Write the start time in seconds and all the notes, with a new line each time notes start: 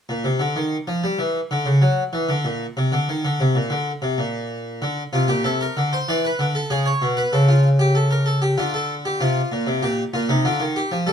0.09 A#2
0.24 C3
0.40 D3
0.56 D#3
0.87 F3
1.04 G3
1.19 E3
1.51 D3
1.66 C#3
1.82 F#3
2.13 E3
2.29 D3
2.44 A#2
2.77 C3
2.92 D3
3.09 D#3
3.25 D3
3.40 C3
3.55 A#2
3.70 D3
4.02 C3
4.18 A#2
4.82 D3
5.13 C3 F4
5.28 A#2 G4
5.44 C3 A4
5.61 A#4
5.77 D3
5.93 C5
6.08 E3 D5
6.25 B4
6.39 D3
6.55 A4
6.70 C#3 G#4
6.86 C#5
7.02 B2
7.17 B4
7.33 C#3 A4
7.48 F4
7.79 G4
7.95 A4
8.11 A#4
8.26 A4
8.42 G4
8.58 D3 F4
8.74 A4
9.05 G4
9.20 C3 F4
9.52 A#2
9.67 C3
9.82 A#2 G4
10.14 A#2 F4
10.29 C3 D#4
10.45 D3 F4
10.60 D#3
10.76 G4
10.92 F3
11.07 G3 A4